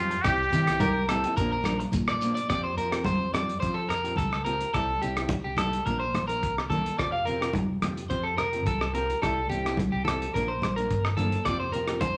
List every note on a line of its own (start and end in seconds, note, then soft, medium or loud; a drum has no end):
0.00 0.14 F2 medium
0.00 0.14 F3 medium
0.00 0.15 F4 medium
0.00 0.23 F4 medium
0.00 0.15 G4 medium
0.10 muted clean electric guitar stroke medium
0.10 closed hi-hat soft
0.22 0.48 C2 loud
0.22 0.42 G3 medium
0.22 0.43 C4 medium
0.22 0.43 E4 medium
0.22 1.08 G4 medium
0.22 0.51 G4 medium
0.22 kick medium
0.22 cross-stick medium
0.22 closed hi-hat soft
0.22 muted conga soft
0.22 shekere medium
0.26 0.43 G4 medium
0.52 0.64 C3 loud
0.52 0.67 G3 medium
0.52 0.68 C4 medium
0.52 0.68 E4 medium
0.52 0.80 G4 medium
0.52 0.67 G4 medium
0.52 closed hi-hat medium
0.52 muted conga soft
0.52 low conga medium
0.52 shekere soft
0.67 1.23 C2 medium
0.67 0.85 C4 soft
0.67 0.85 E4 soft
0.67 0.84 G4 medium
0.67 cross-stick medium
0.67 closed hi-hat medium
0.80 1.07 A#4 medium
0.80 kick medium
0.80 closed hi-hat medium
0.80 high conga medium
0.80 shekere medium
1.08 1.24 G3 soft
1.08 1.24 C4 medium
1.08 1.25 E4 medium
1.08 1.36 A4 medium
1.08 cross-stick medium
1.08 closed hi-hat medium
1.08 muted conga soft
1.08 shekere medium
1.12 1.24 G4 medium
1.24 1.39 C4 soft
1.24 1.39 E4 soft
1.24 1.38 G4 medium
1.24 closed hi-hat medium
1.36 1.82 A#1 medium
1.36 1.55 F3 medium
1.36 1.55 A#3 medium
1.36 1.51 A#4 medium
1.36 kick medium
1.36 closed hi-hat soft
1.36 muted conga soft
1.36 shekere medium
1.40 1.56 D4 medium
1.52 1.79 A#4 medium
1.64 1.82 F3 medium
1.64 1.83 A#3 medium
1.64 cross-stick medium
1.64 closed hi-hat soft
1.64 high conga medium
1.64 shekere medium
1.68 1.84 D4 medium
1.80 muted clean electric guitar stroke medium
1.80 closed hi-hat soft
1.92 2.38 A#2 medium
1.92 kick medium
1.92 closed hi-hat medium
1.92 high conga medium
1.92 shekere medium
2.08 2.34 D5 medium
2.08 cross-stick medium
2.21 2.39 F3 medium
2.21 2.40 A#3 medium
2.21 2.40 D4 medium
2.21 closed hi-hat soft
2.21 shekere medium
2.35 2.48 D5 medium
2.35 closed hi-hat soft
2.48 2.72 F2 loud
2.48 2.67 F3 medium
2.48 2.67 C4 medium
2.48 2.67 F4 medium
2.48 2.68 G4 medium
2.48 2.63 D5 medium
2.48 kick medium
2.48 cross-stick medium
2.48 closed hi-hat soft
2.48 muted conga soft
2.64 2.77 C5 medium
2.77 3.11 F2 medium
2.77 2.92 F3 medium
2.77 2.93 C4 medium
2.77 2.91 F4 medium
2.77 3.04 A#4 medium
2.77 muted nylon-string guitar stroke medium
2.77 closed hi-hat soft
2.91 3.09 C4 soft
2.91 3.09 F4 medium
2.91 3.08 G4 medium
2.91 cross-stick medium
2.91 closed hi-hat soft
3.04 3.32 C5 medium
3.04 kick medium
3.04 closed hi-hat soft
3.04 high conga medium
3.19 3.53 F2 medium
3.32 3.50 F3 medium
3.32 3.51 C4 medium
3.32 3.51 F4 medium
3.32 3.52 G4 medium
3.32 3.60 D5 medium
3.32 cross-stick medium
3.32 closed hi-hat medium
3.32 muted conga soft
3.32 high conga medium
3.49 closed hi-hat soft
3.60 3.79 F3 medium
3.60 3.85 F3 medium
3.60 3.79 C4 medium
3.60 3.80 F4 medium
3.60 3.74 C5 medium
3.60 kick medium
3.60 closed hi-hat soft
3.60 muted conga soft
3.65 3.80 G4 medium
3.74 3.88 A4 medium
3.89 4.18 F2 medium
3.89 4.16 A#4 medium
3.89 cross-stick medium
3.89 closed hi-hat soft
3.89 muted conga soft
4.04 4.22 C4 soft
4.04 4.21 F4 soft
4.04 4.20 G4 soft
4.04 closed hi-hat soft
4.16 4.63 C#2 medium
4.16 4.44 A4 medium
4.16 kick medium
4.16 closed hi-hat soft
4.16 high conga medium
4.33 cross-stick medium
4.45 4.63 F3 soft
4.45 4.63 C4 medium
4.45 4.63 F4 medium
4.45 4.64 G4 medium
4.45 4.72 A#4 medium
4.45 closed hi-hat soft
4.61 closed hi-hat soft
4.74 4.97 C2 loud
4.74 4.91 G3 medium
4.74 4.91 C4 medium
4.74 4.91 E4 medium
4.74 4.92 G4 medium
4.74 5.00 A4 medium
4.74 kick medium
4.74 cross-stick medium
4.74 closed hi-hat soft
4.74 muted conga soft
5.02 5.36 C2 medium
5.02 5.16 G3 medium
5.02 5.17 C4 medium
5.02 5.17 E4 medium
5.02 5.28 G4 medium
5.02 5.15 G4 medium
5.02 closed hi-hat soft
5.17 5.34 C4 soft
5.17 5.34 E4 medium
5.17 5.33 G4 medium
5.17 cross-stick medium
5.17 closed hi-hat soft
5.29 kick medium
5.29 closed hi-hat soft
5.29 high conga medium
5.44 5.78 C2 medium
5.44 5.57 G4 soft
5.57 5.75 G3 medium
5.57 5.76 E4 medium
5.57 5.84 A4 medium
5.57 muted nylon-string guitar stroke medium
5.57 cross-stick medium
5.57 closed hi-hat medium
5.57 muted conga soft
5.57 high conga medium
5.61 5.76 G4 medium
5.73 closed hi-hat soft
5.86 6.09 A#1 medium
5.86 6.03 F3 medium
5.86 6.04 A#3 medium
5.86 6.04 D4 medium
5.86 5.99 A#4 medium
5.86 6.04 A#4 medium
5.86 kick medium
5.86 closed hi-hat soft
5.86 muted conga soft
6.00 6.27 C5 medium
6.14 6.43 A#1 medium
6.14 cross-stick medium
6.14 closed hi-hat soft
6.14 muted conga soft
6.14 high conga medium
6.28 6.46 D4 soft
6.28 6.55 A#4 medium
6.28 6.45 A#4 medium
6.28 closed hi-hat soft
6.32 6.47 A#3 soft
6.43 6.87 C2 medium
6.43 kick medium
6.43 closed hi-hat soft
6.58 cross-stick medium
6.70 6.88 A#3 medium
6.70 6.88 D4 medium
6.70 6.96 A4 medium
6.70 6.89 A#4 medium
6.70 closed hi-hat soft
6.70 high conga medium
6.70 low conga medium
6.86 closed hi-hat soft
6.98 7.21 F1 medium
6.98 7.15 F3 medium
6.98 7.16 F4 medium
6.98 7.16 G4 medium
6.98 7.12 D5 medium
6.98 muted nylon-string guitar stroke medium
6.98 kick medium
6.98 cross-stick medium
6.98 closed hi-hat soft
6.98 muted conga soft
7.12 7.25 F5 medium
7.25 7.61 F1 medium
7.25 7.41 C4 medium
7.25 7.41 F4 medium
7.25 7.39 G4 medium
7.25 7.52 A#4 medium
7.25 muted nylon-string guitar stroke medium
7.25 closed hi-hat soft
7.41 7.58 C4 soft
7.41 7.58 F4 medium
7.41 7.57 G4 medium
7.41 cross-stick medium
7.41 closed hi-hat soft
7.53 muted clean electric guitar stroke medium
7.53 kick medium
7.53 closed hi-hat soft
7.53 high conga medium
7.69 8.02 F1 medium
7.82 7.99 F3 medium
7.82 8.00 C4 medium
7.82 8.00 F4 medium
7.82 8.00 G4 medium
7.82 cross-stick medium
7.82 closed hi-hat medium
7.82 muted conga soft
7.82 high conga medium
7.97 closed hi-hat soft
8.09 8.33 F2 medium
8.09 8.27 F3 medium
8.09 8.27 C4 medium
8.09 8.27 F4 medium
8.09 8.28 G4 medium
8.09 8.24 C5 medium
8.09 kick medium
8.09 closed hi-hat soft
8.09 muted conga soft
8.23 8.37 A4 medium
8.37 8.67 F1 medium
8.37 8.64 A#4 medium
8.37 cross-stick medium
8.37 closed hi-hat soft
8.37 muted conga soft
8.52 8.70 C4 soft
8.52 8.70 F4 soft
8.52 8.69 G4 soft
8.52 closed hi-hat soft
8.66 9.12 C2 medium
8.66 8.93 A4 medium
8.66 kick medium
8.66 closed hi-hat soft
8.66 high conga medium
8.81 cross-stick medium
8.93 9.10 F3 medium
8.93 9.11 C4 medium
8.93 9.11 F4 medium
8.93 9.12 G4 medium
8.93 9.21 A#4 medium
8.93 closed hi-hat soft
9.10 closed hi-hat soft
9.22 9.45 C2 medium
9.22 9.39 G3 medium
9.22 9.39 E4 medium
9.22 9.40 G4 medium
9.22 9.48 A4 medium
9.22 muted nylon-string guitar stroke medium
9.22 kick medium
9.22 cross-stick medium
9.22 closed hi-hat soft
9.22 muted conga soft
9.49 9.84 C2 medium
9.49 9.65 G3 medium
9.49 9.65 C4 medium
9.49 9.64 E4 medium
9.49 9.76 G4 medium
9.49 9.64 G4 medium
9.49 closed hi-hat soft
9.49 low conga medium
9.65 9.82 C4 soft
9.65 9.81 E4 soft
9.65 9.81 G4 medium
9.65 cross-stick medium
9.65 closed hi-hat soft
9.77 kick medium
9.77 closed hi-hat soft
9.77 high conga medium
9.92 10.26 C2 medium
9.92 10.04 G4 medium
10.05 10.24 G3 soft
10.05 10.24 C4 medium
10.05 10.24 E4 medium
10.05 10.32 A4 medium
10.05 cross-stick medium
10.05 closed hi-hat medium
10.05 muted conga soft
10.05 high conga medium
10.10 10.25 G4 medium
10.22 closed hi-hat soft
10.33 10.57 A#1 medium
10.33 10.51 F3 medium
10.33 10.51 A#3 medium
10.33 10.52 D4 medium
10.33 10.48 A#4 medium
10.33 10.52 A#4 medium
10.33 kick medium
10.33 closed hi-hat soft
10.33 muted conga soft
10.48 10.75 C5 medium
10.62 10.91 A#1 medium
10.62 cross-stick medium
10.62 closed hi-hat soft
10.62 muted conga soft
10.62 high conga medium
10.76 10.94 A#3 soft
10.76 10.93 D4 soft
10.76 10.92 A#4 soft
10.76 11.03 A#4 medium
10.76 closed hi-hat soft
10.90 11.35 G1 medium
10.90 kick medium
10.90 closed hi-hat soft
11.05 cross-stick medium
11.17 11.34 F3 medium
11.17 11.35 A#3 medium
11.17 11.36 D4 medium
11.17 11.44 A4 medium
11.17 11.36 A#4 medium
11.17 closed hi-hat soft
11.17 high conga medium
11.17 low conga medium
11.32 closed hi-hat soft
11.45 11.68 F1 medium
11.45 11.63 F3 medium
11.45 11.63 C4 medium
11.45 11.64 F4 medium
11.45 11.64 G4 medium
11.45 11.59 D5 medium
11.45 kick medium
11.45 cross-stick medium
11.45 closed hi-hat soft
11.45 muted conga soft
11.60 11.72 C5 medium
11.72 12.07 F1 medium
11.72 11.88 F3 medium
11.72 11.88 C4 medium
11.72 11.89 F4 medium
11.72 11.87 G4 medium
11.72 11.99 A#4 medium
11.72 closed hi-hat soft
11.88 12.06 C4 soft
11.88 12.05 F4 soft
11.88 12.04 G4 medium
11.88 cross-stick medium
11.88 closed hi-hat soft
12.01 12.17 C5 medium
12.01 kick medium
12.01 closed hi-hat soft
12.01 high conga medium